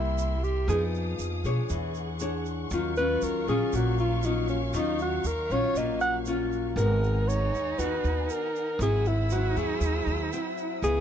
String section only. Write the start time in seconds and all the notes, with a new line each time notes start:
Already playing: A#4 E5 C6
0.68 G#4 F5 D#6
1.71 F#5 C#6
2.71 F#3 F5
6.76 F#5 G#5 A#5
8.79 C5 E6
10.81 B3 E5 D#6